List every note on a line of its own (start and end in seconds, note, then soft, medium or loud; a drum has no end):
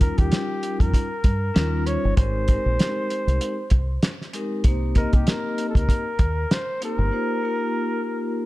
0.00 0.10 D#2 medium
0.00 1.05 G3 medium
0.00 1.06 C#4 medium
0.00 1.06 D#4 medium
0.00 1.06 F4 medium
0.00 0.20 A#4 medium
0.00 1.06 A#4 medium
0.00 kick medium
0.00 closed hi-hat medium
0.18 0.29 D#2 medium
0.18 0.82 G4 loud
0.18 kick medium
0.18 closed hi-hat medium
0.32 snare loud
0.32 closed hi-hat medium
0.63 closed hi-hat medium
0.80 0.91 F2 medium
0.80 1.88 A#4 medium
0.80 kick medium
0.80 closed hi-hat medium
0.94 kick medium
0.94 closed hi-hat medium
1.24 1.50 G2 medium
1.24 kick loud
1.24 closed hi-hat medium
1.54 1.96 D#2 loud
1.54 1.82 G3 medium
1.54 1.82 C#4 medium
1.54 1.82 D#4 medium
1.54 1.82 F4 medium
1.54 1.82 A#4 medium
1.54 snare loud
1.54 closed hi-hat medium
1.86 2.13 G3 medium
1.86 2.13 C#4 medium
1.86 2.13 D#4 medium
1.86 2.13 F4 medium
1.86 2.14 C5 medium
1.86 2.16 C#5 loud
1.86 closed hi-hat medium
2.05 2.15 G1 loud
2.17 2.57 G#1 loud
2.17 2.44 G#3 medium
2.17 2.44 C4 medium
2.17 2.44 D#4 medium
2.17 2.45 G4 medium
2.17 2.45 A#4 medium
2.17 4.30 C5 loud
2.17 kick loud
2.17 closed hi-hat medium
2.48 3.53 G#3 medium
2.48 3.53 C4 medium
2.48 3.54 D#4 medium
2.48 3.54 G4 medium
2.48 3.54 A#4 medium
2.48 kick medium
2.48 closed hi-hat medium
2.66 2.77 A#1 medium
2.79 snare loud
2.79 closed hi-hat medium
3.10 closed hi-hat medium
3.27 3.38 C2 medium
3.27 closed hi-hat medium
3.41 closed hi-hat medium
3.70 3.97 C2 medium
3.70 kick loud
3.70 closed hi-hat medium
4.03 snare loud
4.03 closed hi-hat medium
4.21 snare soft
4.33 4.60 G#3 medium
4.33 4.60 C4 medium
4.33 4.61 D#4 medium
4.33 4.61 G4 medium
4.33 4.61 A#4 medium
4.33 closed hi-hat medium
4.64 5.05 C2 medium
4.64 4.91 A#3 medium
4.64 4.92 C4 medium
4.64 4.92 D#4 medium
4.64 4.92 G4 medium
4.64 4.92 C5 medium
4.64 kick loud
4.64 closed hi-hat medium
4.95 6.00 A#3 medium
4.95 6.00 C4 medium
4.95 6.01 D#4 medium
4.95 6.01 G4 medium
4.95 5.16 A#4 loud
4.95 6.01 D#5 medium
4.95 kick medium
4.95 closed hi-hat medium
5.13 5.24 C2 medium
5.13 5.30 G4 medium
5.13 kick medium
5.13 closed hi-hat medium
5.27 5.69 A#4 medium
5.27 snare loud
5.27 closed hi-hat medium
5.58 closed hi-hat medium
5.69 5.79 A4 medium
5.75 5.86 C#2 medium
5.75 6.54 A#4 medium
5.75 kick medium
5.75 closed hi-hat medium
5.89 kick medium
5.89 closed hi-hat medium
6.19 6.45 D#2 medium
6.19 kick loud
6.19 closed hi-hat medium
6.51 6.83 C5 loud
6.51 snare loud
6.51 closed hi-hat medium
6.81 7.08 A#3 medium
6.81 7.08 C4 medium
6.81 7.08 D#4 medium
6.81 7.09 G4 medium
6.81 7.09 C5 medium
6.81 closed hi-hat medium
6.85 8.46 A#4 loud
6.99 7.10 G1 loud
7.12 7.39 A#3 medium
7.12 7.39 D#4 medium
7.12 7.39 F4 medium
7.12 7.39 G4 medium
7.12 7.39 C5 medium
7.43 8.46 A#3 medium
7.43 8.46 D#4 medium
7.43 8.46 F4 medium
7.43 8.46 G4 medium
7.43 8.46 A#4 medium